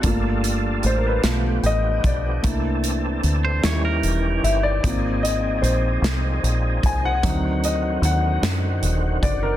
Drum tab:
HH |xxxxxx|xxxxxx|xxxxxx|xxxxxx|
SD |---o--|---o--|---o--|---o--|
BD |o----o|o-----|o----o|o----o|